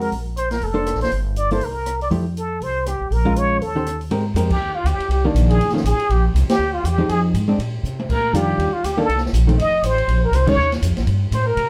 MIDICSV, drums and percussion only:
0, 0, Header, 1, 2, 480
1, 0, Start_track
1, 0, Tempo, 249169
1, 223, Time_signature, 4, 2, 24, 8
1, 22525, End_track
2, 0, Start_track
2, 0, Title_t, "Drums"
2, 24, Note_on_c, 9, 46, 33
2, 217, Note_off_c, 9, 46, 0
2, 230, Note_on_c, 9, 46, 39
2, 423, Note_off_c, 9, 46, 0
2, 709, Note_on_c, 9, 42, 45
2, 902, Note_off_c, 9, 42, 0
2, 977, Note_on_c, 9, 46, 33
2, 979, Note_on_c, 9, 38, 37
2, 1170, Note_off_c, 9, 46, 0
2, 1172, Note_off_c, 9, 38, 0
2, 1185, Note_on_c, 9, 46, 37
2, 1377, Note_off_c, 9, 46, 0
2, 1665, Note_on_c, 9, 42, 46
2, 1667, Note_on_c, 9, 37, 61
2, 1825, Note_on_c, 9, 38, 22
2, 1857, Note_off_c, 9, 42, 0
2, 1859, Note_off_c, 9, 37, 0
2, 1945, Note_on_c, 9, 46, 33
2, 1994, Note_off_c, 9, 38, 0
2, 1994, Note_on_c, 9, 38, 34
2, 2138, Note_off_c, 9, 46, 0
2, 2147, Note_on_c, 9, 46, 36
2, 2186, Note_off_c, 9, 38, 0
2, 2340, Note_off_c, 9, 46, 0
2, 2621, Note_on_c, 9, 42, 41
2, 2814, Note_off_c, 9, 42, 0
2, 2902, Note_on_c, 9, 46, 36
2, 3095, Note_off_c, 9, 46, 0
2, 3102, Note_on_c, 9, 46, 39
2, 3294, Note_off_c, 9, 46, 0
2, 3583, Note_on_c, 9, 42, 52
2, 3585, Note_on_c, 9, 37, 64
2, 3776, Note_off_c, 9, 42, 0
2, 3777, Note_off_c, 9, 37, 0
2, 3873, Note_on_c, 9, 46, 31
2, 4065, Note_off_c, 9, 46, 0
2, 4065, Note_on_c, 9, 46, 36
2, 4257, Note_off_c, 9, 46, 0
2, 4563, Note_on_c, 9, 42, 42
2, 4756, Note_off_c, 9, 42, 0
2, 5039, Note_on_c, 9, 46, 38
2, 5231, Note_off_c, 9, 46, 0
2, 5515, Note_on_c, 9, 42, 50
2, 5517, Note_on_c, 9, 37, 63
2, 5707, Note_off_c, 9, 42, 0
2, 5709, Note_off_c, 9, 37, 0
2, 6003, Note_on_c, 9, 46, 38
2, 6196, Note_off_c, 9, 46, 0
2, 6277, Note_on_c, 9, 36, 43
2, 6470, Note_off_c, 9, 36, 0
2, 6476, Note_on_c, 9, 42, 50
2, 6669, Note_off_c, 9, 42, 0
2, 6965, Note_on_c, 9, 46, 36
2, 7158, Note_off_c, 9, 46, 0
2, 7445, Note_on_c, 9, 42, 50
2, 7447, Note_on_c, 9, 37, 54
2, 7638, Note_off_c, 9, 42, 0
2, 7640, Note_off_c, 9, 37, 0
2, 7721, Note_on_c, 9, 46, 32
2, 7914, Note_off_c, 9, 46, 0
2, 7915, Note_on_c, 9, 51, 60
2, 8108, Note_off_c, 9, 51, 0
2, 8397, Note_on_c, 9, 44, 50
2, 8397, Note_on_c, 9, 51, 63
2, 8590, Note_off_c, 9, 44, 0
2, 8590, Note_off_c, 9, 51, 0
2, 8675, Note_on_c, 9, 49, 76
2, 8676, Note_on_c, 9, 36, 83
2, 8868, Note_off_c, 9, 49, 0
2, 8869, Note_off_c, 9, 36, 0
2, 9357, Note_on_c, 9, 44, 55
2, 9357, Note_on_c, 9, 51, 65
2, 9549, Note_off_c, 9, 44, 0
2, 9549, Note_off_c, 9, 51, 0
2, 9637, Note_on_c, 9, 51, 44
2, 9829, Note_off_c, 9, 51, 0
2, 9839, Note_on_c, 9, 51, 65
2, 10031, Note_off_c, 9, 51, 0
2, 10320, Note_on_c, 9, 44, 61
2, 10320, Note_on_c, 9, 51, 68
2, 10512, Note_off_c, 9, 44, 0
2, 10512, Note_off_c, 9, 51, 0
2, 10604, Note_on_c, 9, 51, 49
2, 10796, Note_off_c, 9, 51, 0
2, 10803, Note_on_c, 9, 51, 57
2, 10964, Note_on_c, 9, 38, 28
2, 10995, Note_off_c, 9, 51, 0
2, 11113, Note_off_c, 9, 38, 0
2, 11113, Note_on_c, 9, 38, 43
2, 11278, Note_on_c, 9, 44, 64
2, 11278, Note_on_c, 9, 51, 68
2, 11306, Note_off_c, 9, 38, 0
2, 11471, Note_off_c, 9, 44, 0
2, 11471, Note_off_c, 9, 51, 0
2, 11551, Note_on_c, 9, 51, 47
2, 11743, Note_off_c, 9, 51, 0
2, 11759, Note_on_c, 9, 51, 54
2, 11952, Note_off_c, 9, 51, 0
2, 12245, Note_on_c, 9, 44, 51
2, 12245, Note_on_c, 9, 51, 71
2, 12437, Note_off_c, 9, 44, 0
2, 12437, Note_off_c, 9, 51, 0
2, 12511, Note_on_c, 9, 51, 73
2, 12513, Note_on_c, 9, 38, 81
2, 12703, Note_off_c, 9, 51, 0
2, 12705, Note_off_c, 9, 38, 0
2, 13192, Note_on_c, 9, 44, 62
2, 13192, Note_on_c, 9, 51, 68
2, 13385, Note_off_c, 9, 44, 0
2, 13385, Note_off_c, 9, 51, 0
2, 13665, Note_on_c, 9, 51, 61
2, 13858, Note_off_c, 9, 51, 0
2, 14149, Note_on_c, 9, 44, 54
2, 14149, Note_on_c, 9, 51, 68
2, 14341, Note_off_c, 9, 44, 0
2, 14341, Note_off_c, 9, 51, 0
2, 14634, Note_on_c, 9, 51, 60
2, 14827, Note_off_c, 9, 51, 0
2, 15116, Note_on_c, 9, 44, 53
2, 15309, Note_off_c, 9, 44, 0
2, 15400, Note_on_c, 9, 48, 54
2, 15593, Note_off_c, 9, 48, 0
2, 15594, Note_on_c, 9, 36, 73
2, 15598, Note_on_c, 9, 49, 73
2, 15786, Note_off_c, 9, 36, 0
2, 15791, Note_off_c, 9, 49, 0
2, 16075, Note_on_c, 9, 44, 57
2, 16075, Note_on_c, 9, 51, 64
2, 16268, Note_off_c, 9, 44, 0
2, 16268, Note_off_c, 9, 51, 0
2, 16559, Note_on_c, 9, 51, 58
2, 16752, Note_off_c, 9, 51, 0
2, 17033, Note_on_c, 9, 44, 52
2, 17033, Note_on_c, 9, 51, 75
2, 17226, Note_off_c, 9, 44, 0
2, 17226, Note_off_c, 9, 51, 0
2, 17519, Note_on_c, 9, 51, 59
2, 17681, Note_on_c, 9, 38, 28
2, 17711, Note_off_c, 9, 51, 0
2, 17836, Note_off_c, 9, 38, 0
2, 17836, Note_on_c, 9, 38, 46
2, 17989, Note_on_c, 9, 44, 56
2, 17989, Note_on_c, 9, 51, 68
2, 18028, Note_off_c, 9, 38, 0
2, 18181, Note_off_c, 9, 44, 0
2, 18181, Note_off_c, 9, 51, 0
2, 18278, Note_on_c, 9, 51, 51
2, 18470, Note_off_c, 9, 51, 0
2, 18482, Note_on_c, 9, 51, 67
2, 18675, Note_off_c, 9, 51, 0
2, 18945, Note_on_c, 9, 44, 56
2, 18945, Note_on_c, 9, 51, 79
2, 19137, Note_off_c, 9, 44, 0
2, 19137, Note_off_c, 9, 51, 0
2, 19228, Note_on_c, 9, 51, 45
2, 19420, Note_off_c, 9, 51, 0
2, 19427, Note_on_c, 9, 51, 59
2, 19619, Note_off_c, 9, 51, 0
2, 19899, Note_on_c, 9, 44, 47
2, 19899, Note_on_c, 9, 51, 65
2, 20092, Note_off_c, 9, 44, 0
2, 20092, Note_off_c, 9, 51, 0
2, 20174, Note_on_c, 9, 49, 79
2, 20182, Note_on_c, 9, 36, 96
2, 20367, Note_off_c, 9, 49, 0
2, 20375, Note_off_c, 9, 36, 0
2, 20653, Note_on_c, 9, 51, 47
2, 20655, Note_on_c, 9, 38, 41
2, 20846, Note_off_c, 9, 51, 0
2, 20848, Note_off_c, 9, 38, 0
2, 20852, Note_on_c, 9, 44, 69
2, 20852, Note_on_c, 9, 51, 74
2, 21045, Note_off_c, 9, 44, 0
2, 21045, Note_off_c, 9, 51, 0
2, 21126, Note_on_c, 9, 51, 46
2, 21128, Note_on_c, 9, 38, 39
2, 21319, Note_off_c, 9, 51, 0
2, 21321, Note_off_c, 9, 38, 0
2, 21325, Note_on_c, 9, 51, 61
2, 21518, Note_off_c, 9, 51, 0
2, 21808, Note_on_c, 9, 44, 56
2, 21808, Note_on_c, 9, 51, 73
2, 22001, Note_off_c, 9, 44, 0
2, 22001, Note_off_c, 9, 51, 0
2, 22289, Note_on_c, 9, 51, 65
2, 22482, Note_off_c, 9, 51, 0
2, 22525, End_track
0, 0, End_of_file